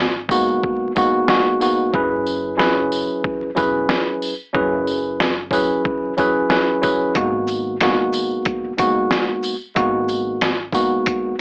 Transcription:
Already playing: upright bass G#1
0.29 tine electric piano G#2 G#3 A#3 B3 F#4, kick, tambourine
0.63 kick
0.95 tine electric piano G#2 G#3 A#3 B3 F#4, kick, tambourine
1.27 tine electric piano G#2 G#3 A#3 B3 F#4, snare
1.60 tine electric piano G#2 G#3 A#3 B3 F#4, tambourine
1.93 upright bass F#1, tine electric piano F#3 C#4 E4 G#4 B4, kick
2.26 tambourine
2.57 tine electric piano F#3 C#4 E4 G#4 B4, snare
2.92 tambourine
3.24 kick
3.43 muted upright bass stroke
3.55 upright bass E1, tine electric piano F#3 C#4 E4 G#4 B4, kick, tambourine
3.89 snare
4.22 tambourine
4.53 upright bass F#1, tine electric piano F#3 C#4 E4 G#4 B4, kick
4.87 tambourine
5.20 snare
5.51 tine electric piano F#3 C#4 E4 G#4 B4, kick, tambourine
5.85 kick
6.17 tine electric piano F#3 C#4 E4 G#4 B4, kick, tambourine
6.49 tine electric piano F#3 C#4 E4 G#4 B4, snare
6.81 tine electric piano F#3 C#4 E4 G#4 B4, kick, tambourine
7.14 upright bass G#1, tine electric piano G#2 G#3 A#3 B3 F#4, kick, closed hi-hat
7.47 tambourine, shaker
7.80 tine electric piano G#2 G#3 A#3 B3 F#4, snare, closed hi-hat
8.13 tambourine, shaker
8.45 kick, closed hi-hat
8.64 muted upright bass stroke
8.77 upright bass F#1, tine electric piano G#2 G#3 A#3 B3 F#4, kick, closed hi-hat, tambourine, shaker
9.11 snare, closed hi-hat
9.43 tambourine, shaker
9.74 upright bass G#1, tine electric piano G#2 G#3 A#3 B3 F#4, kick, closed hi-hat
10.08 tambourine, shaker
10.41 snare, closed hi-hat
10.72 tine electric piano G#2 G#3 A#3 B3 F#4, kick, tambourine, shaker
11.06 kick, closed hi-hat

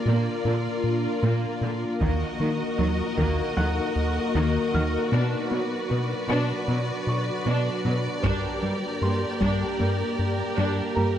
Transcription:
Already playing: ambient pad A#3 D4 F4 A#4, viola section F4, violin section A#4 D5
0.06 analog synth bass A#2, cello section A#2, synth arpeggio sound A#3, viola section A#3
0.45 analog synth bass A#2, cello section A#2, viola section D3, synth arpeggio sound D4
0.84 analog synth bass A#2
1.23 analog synth bass A#2, cello section A#2, viola section A#3, synth arpeggio sound A#3
1.61 analog synth bass A#2, cello section A#2, viola section D3, synth arpeggio sound D4
2.01 analog synth bass D#2, synth arpeggio sound D#3, cello section D#3, viola section A#3 F#4, ambient pad A#3 D#4 F#4 A#4, violin section A#4 D#5, taiko
2.39 viola section D#3, analog synth bass D#3, cello section D#3, synth arpeggio sound A#3
2.78 analog synth bass D#2, cello section D#3, viola section F#3, synth arpeggio sound F#3
3.17 analog synth bass D#2, synth arpeggio sound D#3, cello section D#3, viola section A#3, taiko
3.56 analog synth bass D#2, viola section D#3, cello section D#3, synth arpeggio sound F#3, felt piano F#5 F#6
3.96 analog synth bass D#2
4.34 analog synth bass D#2, synth arpeggio sound D#3, cello section D#3, viola section A#3
4.73 analog synth bass D#2, viola section D#3, cello section D#3, synth arpeggio sound F#3, felt piano F6
5.12 analog synth bass B2, cello section B2, ambient pad F#3 D4 B4, synth arpeggio sound B3, viola section D4, violin section B4 D5
5.51 cello section B2, viola section F#3, analog synth bass B3, synth arpeggio sound F#4
5.90 cello section B2, analog synth bass B2, viola section B3, synth arpeggio sound D4
6.29 cello section B2, analog synth bass B2, synth arpeggio sound B3, viola section D4
6.68 analog synth bass B2, cello section B2, viola section F#3, synth arpeggio sound D4
7.07 analog synth bass B2, felt piano C#6
7.46 analog synth bass B2, cello section B2, synth arpeggio sound B3, viola section D4
7.85 analog synth bass B2, cello section B2, viola section F#3, synth arpeggio sound D4
8.23 analog synth bass G2, cello section G2, synth arpeggio sound G3, ambient pad A#3 G4 A#4, viola section D4 G4, violin section A#4, taiko
8.63 cello section G2, analog synth bass G3, viola section G3, synth arpeggio sound D4
9.02 analog synth bass G2, cello section G2, synth arpeggio sound A#3, viola section A#3, felt piano C6
9.41 analog synth bass G2, cello section G2, synth arpeggio sound G3, viola section D4, taiko
9.80 cello section G2, analog synth bass G2, viola section G3, synth arpeggio sound A#3
10.19 analog synth bass G2
10.58 analog synth bass G2, cello section G2, synth arpeggio sound G3, viola section D4
10.95 analog synth bass G2, cello section G2, viola section G3, synth arpeggio sound A#3, felt piano A#4 A#5

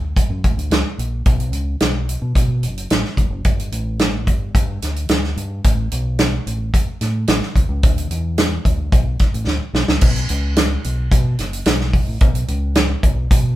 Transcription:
Already playing: fingered electric bass D2
0.17 kick, closed hi-hat
0.30 fingered electric bass F#2
0.44 fingered electric bass A1, kick, closed hi-hat
0.57 fingered electric bass D2, closed hi-hat
0.70 fingered electric bass C#2, snare, closed hi-hat
0.98 fingered electric bass A#1, closed hi-hat
1.26 fingered electric bass B1, kick, closed hi-hat
1.40 closed hi-hat
1.52 fingered electric bass C#2, closed hi-hat
1.80 fingered electric bass B1, snare, closed hi-hat
2.09 closed hi-hat
2.22 fingered electric bass B2
2.35 fingered electric bass B2, kick, closed hi-hat
2.63 fingered electric bass F#1, closed hi-hat
2.77 closed hi-hat
2.90 fingered electric bass A1, snare, closed hi-hat
3.04 snare
3.17 fingered electric bass F1, kick, closed hi-hat
3.30 fingered electric bass F#1
3.44 fingered electric bass G1, kick, closed hi-hat
3.60 closed hi-hat
3.72 fingered electric bass A1, closed hi-hat
3.99 snare, closed hi-hat
4.27 fingered electric bass G1, kick, closed hi-hat
4.54 fingered electric bass G2, kick, closed hi-hat
4.82 fingered electric bass D2, snare, closed hi-hat
4.96 closed hi-hat
5.09 fingered electric bass D2, snare, closed hi-hat
5.24 snare
5.36 fingered electric bass G2, closed hi-hat
5.64 fingered electric bass A1, kick, closed hi-hat
5.92 fingered electric bass B1, closed hi-hat
6.19 snare, closed hi-hat
6.46 fingered electric bass A1, closed hi-hat
6.74 kick, closed hi-hat
6.88 muted fingered electric bass stroke
7.01 fingered electric bass A2, snare, closed hi-hat
7.27 fingered electric bass A1, snare, closed hi-hat
7.42 snare
7.56 fingered electric bass C2, kick, closed hi-hat
7.69 fingered electric bass C#2
7.83 fingered electric bass D2, kick, closed hi-hat
7.98 closed hi-hat
8.11 fingered electric bass E2, closed hi-hat
8.38 snare, closed hi-hat
8.65 fingered electric bass D2, kick, closed hi-hat
8.92 fingered electric bass B1, kick, closed hi-hat
9.19 kick, snare, closed hi-hat
9.34 fingered electric bass A1, closed hi-hat
9.47 fingered electric bass D2, snare
9.73 fingered electric bass B1, snare
9.88 fingered electric bass C#2, snare
10.01 fingered electric bass B1, kick, crash
10.16 closed hi-hat
10.29 fingered electric bass C#2, closed hi-hat
10.56 snare, closed hi-hat
10.84 fingered electric bass B1, closed hi-hat
11.11 fingered electric bass B2, kick, closed hi-hat
11.39 fingered electric bass F#1, snare, closed hi-hat
11.53 closed hi-hat
11.66 fingered electric bass B1, snare, closed hi-hat
11.80 snare
11.93 kick, open hi-hat
12.07 fingered electric bass A1
12.21 fingered electric bass B1, kick, closed hi-hat
12.35 closed hi-hat
12.48 fingered electric bass C#2, closed hi-hat
12.75 snare, closed hi-hat
13.03 fingered electric bass B1, kick, closed hi-hat
13.31 fingered electric bass B2, kick, closed hi-hat

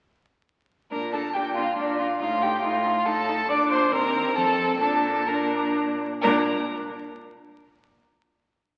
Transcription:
0.91 cello A#2, viola D4, violin A#4 A#5
1.13 viola D4, violin A4 A5
1.34 cello A#2, viola D4, violin G4 G5
1.55 viola D4, violin F4 F5
1.76 cello A#2, violin D4 D5, viola D4
1.98 viola D4, violin F4 F5
2.19 cello A2, viola D#4, violin F4 F5
2.42 viola D#4, violin G4 G5
2.63 cello A2, viola D#4, violin F4 F5
2.85 viola D#4
3.05 cello A2, viola D#4, violin A4 A5
3.28 viola D#4
3.48 cello A#2, viola D4, violin D5 D6
3.70 violin C5 C6
3.92 cello D#2, viola C4, violin A#4 A#5
4.36 cello F2, viola C4, violin A4 A5
4.80 cello A#2, viola D4, violin A4 A5
5.26 viola D4, violin A#4 A#5
6.21 cello A#2, viola D4, violin A#4 A#5

